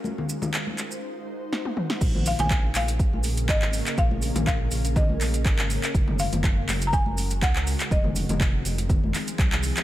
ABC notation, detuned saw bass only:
X:1
M:4/4
L:1/16
Q:"Swing 16ths" 1/4=122
K:Bbm
V:1 name="Detuned saw bass" clef=bass
z16 | B,,,3 B,,,3 B,,,3 B,,,3 A,,,3 z | B,,,3 B,,,3 B,,,3 B,,,3 A,,,3 z | G,,,3 G,,,3 G,,,3 G,,,3 D,,3 z |
F,,,3 F,,,3 F,,,3 F,,, z2 C,,3 z |]